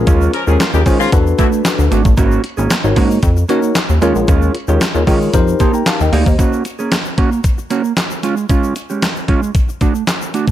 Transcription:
Already playing: C#4 F4 G#4 A#4
0.07 D#2 G#3 C#4 F4, kick, closed hi-hat, shaker
0.21 shaker
0.33 F3 C#4 A#4, closed hi-hat
0.47 D#2 F3 G#3 C#4 F4 G4 G#4 A#4, shaker
0.59 C#3 A#3 F4, snare, clap, closed hi-hat, shaker
0.74 D#2 G3 C#4 D#4 F4 G4 G#4 A#4, muted clean electric guitar stroke, shaker
0.86 D#3 G#3 C#4 F4 G#4 C5, kick, open hi-hat, shaker
1.00 C#3 A#3 F4, muted clean electric guitar stroke, shaker
1.12 E2 D4 F#4 A4 B4, kick, closed hi-hat, shaker
1.26 muted clean electric guitar stroke, shaker
1.38 B2 A3 D4 E4 F#4, kick, closed hi-hat, shaker
1.52 muted clean electric guitar stroke, shaker
1.65 snare, clap, closed hi-hat, shaker
1.78 D2, muted clean electric guitar stroke, shaker
1.91 G#1 A3 D4 F#4, closed hi-hat, shaker
2.05 A1, muted clean electric guitar stroke, kick, shaker
2.17 G#1 A#3 C#4 F#4, kick, closed hi-hat, shaker
2.32 shaker
2.44 muted clean electric guitar stroke, closed hi-hat
2.57 G#1 A#3 C#4 G#4, shaker
2.70 snare, clap, closed hi-hat, shaker
2.84 G#1 D#4 F#4 A#4 C#5, muted clean electric guitar stroke, shaker
2.96 G#2 A#3 C#4 F#4, kick, open hi-hat, shaker
3.10 muted clean electric guitar stroke, shaker
3.23 F2, kick, closed hi-hat, shaker
3.37 muted clean electric guitar stroke, shaker
3.49 A#3 C#4 D#4 F#4 A#4 C#5, closed hi-hat, shaker
3.63 muted clean electric guitar stroke, shaker
3.75 snare, clap, closed hi-hat, shaker
3.89 D#2, muted clean electric guitar stroke, shaker
4.01 D#2 G#3 C#4 F4 G#4 A#4 C#5, closed hi-hat, shaker
4.15 A#1, muted clean electric guitar stroke, shaker
4.28 D#2 G#3 C#4 F4, kick, closed hi-hat, shaker
4.42 shaker
4.55 closed hi-hat
4.68 D#2 G#3 C#4 F4 G4 G#4 A#4 C#5, shaker
4.81 snare, clap, closed hi-hat, shaker
4.95 D#2 F4 G#4 A#4 C#5, muted clean electric guitar stroke, shaker
5.07 D#3 G#3 C#4 F4 G#4 A#4 C#5, kick, open hi-hat, shaker
5.21 muted clean electric guitar stroke, shaker
5.33 F2 D#4 G4 A#4 C5, kick, closed hi-hat, shaker
5.47 muted clean electric guitar stroke, shaker
5.59 A#3 D#4 G4 A5 C6, kick, closed hi-hat, shaker
5.74 G5 A#5, muted clean electric guitar stroke, shaker
5.86 F5 A5, snare, clap, closed hi-hat, shaker
6.00 D#2 D#5 G5, muted clean electric guitar stroke, shaker
6.12 D2 A#3 D#4 G4 D5 F5, open hi-hat, shaker
6.26 D#2 C5 D#5, muted clean electric guitar stroke, kick, shaker
6.38 A#3 C#4 F#4, kick, closed hi-hat, shaker
6.53 shaker
6.65 muted clean electric guitar stroke, closed hi-hat, shaker
6.79 A#3 C#4 G#4, shaker
6.92 snare, clap, closed hi-hat, shaker
7.05 muted clean electric guitar stroke, shaker
7.17 A#3 C#4 F#4, kick, closed hi-hat
7.32 muted clean electric guitar stroke, shaker
7.44 kick, closed hi-hat, shaker
7.58 muted clean electric guitar stroke, shaker
7.70 A#3 C#4 F#4, closed hi-hat, shaker
7.84 muted clean electric guitar stroke, shaker
7.97 snare, clap, closed hi-hat, shaker
8.11 muted clean electric guitar stroke, shaker
8.23 G#3 C#4 F4, closed hi-hat, shaker
8.37 muted clean electric guitar stroke, shaker
8.49 G#3 C#4 F4, kick, closed hi-hat, shaker
8.64 shaker
8.76 closed hi-hat, shaker
8.90 G#3 C#4 G4, shaker
9.02 snare, clap, closed hi-hat, shaker
9.16 muted clean electric guitar stroke, shaker
9.28 G#3 C#4 F4, kick, closed hi-hat
9.43 muted clean electric guitar stroke, shaker
9.55 kick, closed hi-hat, shaker
9.69 muted clean electric guitar stroke, shaker
9.81 A3 D4 F#4, kick, closed hi-hat, shaker
9.95 muted clean electric guitar stroke, shaker
10.07 snare, clap, closed hi-hat, shaker
10.21 muted clean electric guitar stroke, shaker
10.34 A3 D4 F#4, closed hi-hat, shaker
10.48 muted clean electric guitar stroke, kick, shaker

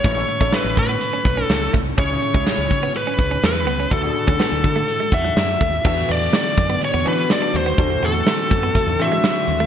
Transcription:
0.04 A1 A2 A3 C#4 E4 A4 C#5, kick, closed hi-hat
0.16 C#4 E4 A4 C#5, closed hi-hat
0.29 muted clean electric guitar stroke, closed hi-hat
0.40 A1 A3 C#4 E4 A4 C#5, kick, closed hi-hat
0.53 A3 B4, snare
0.65 A1, closed hi-hat
0.77 A2 B4, muted clean electric guitar stroke, kick, closed hi-hat
0.89 B3, closed hi-hat
1.01 closed hi-hat
1.13 C#4, closed hi-hat
1.25 B1, muted clean electric guitar stroke, kick, closed hi-hat
1.37 C#4, closed hi-hat
1.44 A4
1.49 C#2, snare
1.62 closed hi-hat
1.73 C2 A3, kick, closed hi-hat
1.86 closed hi-hat
1.97 C#2 C#3 C#4 E4 G#4 C#5, kick, closed hi-hat
2.09 C#4 E4 G#4 C#5, closed hi-hat
2.22 muted clean electric guitar stroke, closed hi-hat
2.34 C#2 G#3 C#4 E4 G#4 C#5, kick, closed hi-hat
2.46 G#3, snare
2.58 C#2, closed hi-hat
2.71 C#3, muted clean electric guitar stroke, kick, closed hi-hat
2.83 B3, closed hi-hat
2.94 B4, closed hi-hat
3.07 C#4, closed hi-hat
3.19 C#2, muted clean electric guitar stroke, kick, closed hi-hat
3.31 C#4, closed hi-hat
3.43 E2 B4, muted clean electric guitar stroke, snare
3.55 closed hi-hat
3.67 C#2 B3, closed hi-hat
3.79 C#4, closed hi-hat
3.91 D2 D3 D4 E4 F#4 A4, kick, closed hi-hat
4.03 D4 E4 F#4 G#4, closed hi-hat
4.15 muted clean electric guitar stroke, closed hi-hat
4.27 D2 C#4 D4 E4 F#4 A4, kick, closed hi-hat
4.40 B3, snare
4.52 D2, closed hi-hat
4.64 D3, muted clean electric guitar stroke, kick, closed hi-hat
4.76 A3, closed hi-hat
4.88 closed hi-hat
5.00 G#3, closed hi-hat
5.12 E2 E5 F#5, muted clean electric guitar stroke, kick, closed hi-hat
5.24 F#3, closed hi-hat
5.36 F#2 D5, snare
5.49 closed hi-hat
5.61 D#2 A3, kick, closed hi-hat
5.73 closed hi-hat
5.84 E2 D3 E3 A3 B3 D4 F#4 A4 E5, kick, crash
5.97 muted clean electric guitar stroke, closed hi-hat
6.09 E2 B3 D5, closed hi-hat
6.21 closed hi-hat
6.33 A3 D5, snare
6.45 closed hi-hat
6.58 F#2, muted clean electric guitar stroke, kick, closed hi-hat
6.70 B3, closed hi-hat
6.81 C#5, muted clean electric guitar stroke, closed hi-hat
6.94 E2 B3, closed hi-hat
7.05 E3 B3 C#4 D4 F#4 A4 B4, closed hi-hat
7.18 closed hi-hat
7.30 D5, snare
7.42 D4, closed hi-hat
7.54 D#2 C5, muted clean electric guitar stroke, closed hi-hat
7.66 B3, closed hi-hat
7.78 E2 E3 C4 D4 F#4 A4, kick, closed hi-hat
7.90 muted clean electric guitar stroke, closed hi-hat
8.03 E2 B3 A4, closed hi-hat
8.14 closed hi-hat
8.27 A3, snare
8.38 closed hi-hat
8.51 F#2, muted clean electric guitar stroke, kick, closed hi-hat
8.63 B3, closed hi-hat
8.75 A3, kick, closed hi-hat
8.87 E2, closed hi-hat
8.99 E3 C4 D4 E4 A4 E5, muted clean electric guitar stroke, closed hi-hat
9.06 F#4
9.11 G#3, closed hi-hat
9.24 F#3, snare
9.36 muted clean electric guitar stroke, closed hi-hat
9.48 D#2, closed hi-hat
9.60 A3, closed hi-hat

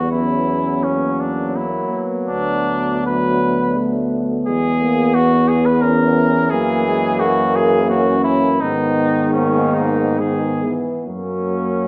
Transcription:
Already playing: E2 G3 B3 F#4
0.11 F#3 C#4 E4
0.84 A#3 C#4
1.20 D4
1.56 A#3 E4
1.93 B3
2.28 D2 B3 D4
3.06 F#3 B4
3.78 A3
4.47 E2 G#3 G#4
4.82 A#3
5.14 E3 B3 F#4
5.48 G#4
5.65 B4
5.81 C#4 A#4
6.50 F#2 A#3 G#4
6.87 G#3
7.20 A#3 F#4
7.56 G#4
7.90 C#4 F#4
8.24 E4
8.61 G#2 D#3 B3 D#4
9.33 A#3 C#4
9.74 D#4
10.20 D#3 G#3 B3 G#4
10.63 E3 B3
11.05 F#2 F#3 A#3 C#4

